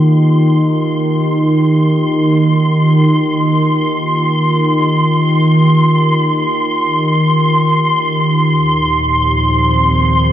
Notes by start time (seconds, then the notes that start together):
Already playing: D#3 A#3 F4 G4 C6
8.46 D#2
8.62 A#2
8.99 F3
9.32 C5
9.48 C4